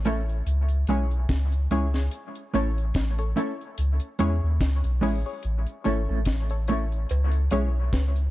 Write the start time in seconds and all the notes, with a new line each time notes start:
Already playing: A1
0.05 A3 C#4 E4 A4 C#5, closed hi-hat
0.29 closed hi-hat
0.46 C#2, closed hi-hat
0.68 closed hi-hat
0.87 B1 G#3 C#4 E4 G#4 C#5, closed hi-hat
1.11 closed hi-hat
1.29 C#2, kick, snare, closed hi-hat
1.52 closed hi-hat
1.70 C#2 G#3 C#4 E4 G#4 C#5, closed hi-hat
1.94 G#4 C#5, muted clean electric guitar stroke, snare, closed hi-hat
2.11 closed hi-hat
2.35 closed hi-hat
2.54 A1 A3 C#4 E4 A4 C#5, closed hi-hat
2.78 closed hi-hat
2.94 A1, kick, snare, closed hi-hat
3.19 A4 C#5, closed hi-hat
3.36 A3 C#4 E4 A4 C#5, closed hi-hat
3.61 closed hi-hat
3.78 C#2, closed hi-hat
4.00 closed hi-hat
4.19 E2 G#3 C#4 E4 G#4 C#5, closed hi-hat
4.43 D#2
4.61 C#2, kick, snare, closed hi-hat
4.84 B1, closed hi-hat
5.01 A1 G#3 C#4 E4 G#4 C#5, open hi-hat
5.26 G#4 C#5
5.43 A1, closed hi-hat
5.67 closed hi-hat
5.84 G#1 A3 C#4 E4 A4 C#5, closed hi-hat
6.09 A1 A3 C#4 E4 A4
6.25 A1, kick, snare, closed hi-hat
6.50 A4 C#5, closed hi-hat
6.68 A3 C#4 E4 A4 C#5, closed hi-hat
6.92 closed hi-hat
7.09 C#2, closed hi-hat, cowbell
7.32 closed hi-hat
7.51 B1 G#3 C#4 E4 G#4 C#5, closed hi-hat
7.93 C#2, kick, snare, closed hi-hat, cowbell
8.16 closed hi-hat